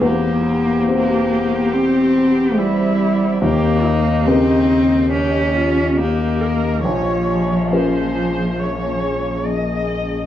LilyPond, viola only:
\new Staff \with { instrumentName = "Viola" } { \time 4/4 \key ees \mixolydian \tempo 4 = 70 g'8 g'2~ g'8 e'4 | g'8 ees'4. g'8 f'8 g'8 bes'8 | des''4 c''4 des''4 ees''4 | }